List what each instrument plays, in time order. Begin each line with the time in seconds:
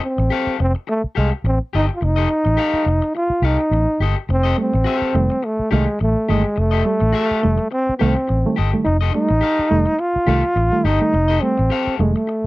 0.03 trombone C4, muted clean electric guitar stroke
0.18 fingered electric bass A1, muted clean electric guitar stroke
0.30 clean electric guitar G4 A4 F5
0.47 muted fingered electric bass stroke
0.59 fingered electric bass F1, trombone C4, muted clean electric guitar stroke
0.75 muted clean electric guitar stroke
0.87 trombone A3, muted clean electric guitar stroke
1.04 muted fingered electric bass stroke
1.15 fingered electric bass C2, trombone G#3, clean electric guitar G4 A4 F5
1.32 muted clean electric guitar stroke
1.44 fingered electric bass A1, trombone C4, muted clean electric guitar stroke
1.73 fingered electric bass G1, trombone D#4, clean electric guitar G4 A4 D#5
1.89 muted clean electric guitar stroke
1.95 trombone F4
2.01 fingered electric bass F1, trombone D#4, muted clean electric guitar stroke
2.16 clean electric guitar G4 A4 D#5
2.29 muted clean electric guitar stroke
2.45 fingered electric bass A1, muted clean electric guitar stroke
2.57 clean electric guitar G4 A4 F5
2.73 muted fingered electric bass stroke
2.86 fingered electric bass F1, muted clean electric guitar stroke
3.02 muted clean electric guitar stroke
3.15 trombone F4, muted clean electric guitar stroke
3.30 muted fingered electric bass stroke
3.42 fingered electric bass C2, trombone D#4, clean electric guitar G4 A4 F5
3.59 muted clean electric guitar stroke
3.71 fingered electric bass A1, muted clean electric guitar stroke
4.00 fingered electric bass G1, clean electric guitar G4 A4 D#5
4.17 muted clean electric guitar stroke
4.29 fingered electric bass F1, trombone C4, muted clean electric guitar stroke
4.43 clean electric guitar G4 A4 D#5
4.57 reed electric piano G3 A3, trombone C4, muted clean electric guitar stroke
4.74 fingered electric bass A1, muted clean electric guitar stroke
4.84 clean electric guitar F#4 G#4 E5
4.96 clean electric guitar G4 A4 F5
5.02 muted fingered electric bass stroke
5.14 fingered electric bass F1, reed electric piano D#3 G3 A3, muted clean electric guitar stroke
5.30 reed electric piano G3 A3, muted clean electric guitar stroke
5.42 trombone A3, muted clean electric guitar stroke
5.59 muted fingered electric bass stroke
5.71 fingered electric bass C2, reed electric piano D#3 G3 A3, trombone G#3, clean electric guitar G4 A4 F5
5.86 muted clean electric guitar stroke
5.99 fingered electric bass A1, reed electric piano G3 A3, trombone A3, muted clean electric guitar stroke
6.29 fingered electric bass G1, reed electric piano D#3 G3 A3, trombone G#3, clean electric guitar G4 A4 D#5
6.44 muted clean electric guitar stroke
6.56 fingered electric bass F1, trombone A3, muted clean electric guitar stroke
6.71 clean electric guitar G4 A4 D#5
6.84 reed electric piano G3 A3, muted clean electric guitar stroke
7.00 fingered electric bass A1, muted clean electric guitar stroke
7.13 clean electric guitar F#4 G#4 E5
7.25 clean electric guitar G4 A4 F5
7.31 muted fingered electric bass stroke
7.42 fingered electric bass F1, reed electric piano D#3 G3 A3, muted clean electric guitar stroke
7.58 reed electric piano G3 A3, muted clean electric guitar stroke
7.71 trombone C4, muted clean electric guitar stroke
7.89 muted fingered electric bass stroke
7.98 reed electric piano D#3 G3 A3, trombone C4, clean electric guitar G4 A4 F5
8.02 fingered electric bass C2
8.15 muted clean electric guitar stroke
8.28 fingered electric bass A1, muted clean electric guitar stroke
8.45 reed electric piano D#3 G3 A3
8.56 fingered electric bass G1, clean electric guitar G4 A4 D#5
8.72 reed electric piano D#3 G3 A3, muted clean electric guitar stroke
8.84 fingered electric bass F1, trombone D#4, muted clean electric guitar stroke
9.01 clean electric guitar G4 A4 D#5
9.12 reed electric piano G3 A3, trombone D#4, muted clean electric guitar stroke
9.29 fingered electric bass A1, muted clean electric guitar stroke
9.41 clean electric guitar G4 A4 F5
9.59 muted fingered electric bass stroke
9.70 fingered electric bass F1, reed electric piano D#3 G3 A3, muted clean electric guitar stroke
9.86 reed electric piano G3 A3, muted clean electric guitar stroke
9.99 trombone F4, muted clean electric guitar stroke
10.16 muted fingered electric bass stroke
10.27 fingered electric bass C2, reed electric piano D#3 G3 A3, clean electric guitar G4 A4 F5
10.43 muted clean electric guitar stroke
10.56 fingered electric bass A1, muted clean electric guitar stroke
10.72 reed electric piano D#3 G3 A3
10.84 fingered electric bass G1, trombone D#4, clean electric guitar G4 A4 D#5
11.01 reed electric piano D#3 G3 A3, muted clean electric guitar stroke
11.13 fingered electric bass F1, muted clean electric guitar stroke
11.28 clean electric guitar G4 A4 D#5
11.41 reed electric piano G3 A3, trombone C4, muted clean electric guitar stroke
11.58 fingered electric bass A1, muted clean electric guitar stroke
11.70 clean electric guitar G4 A4 F5
11.87 muted fingered electric bass stroke
11.98 fingered electric bass F1, reed electric piano D#3 G3 A3, trombone G#3, muted clean electric guitar stroke
12.15 reed electric piano G3 A3, trombone A3, muted clean electric guitar stroke
12.27 muted clean electric guitar stroke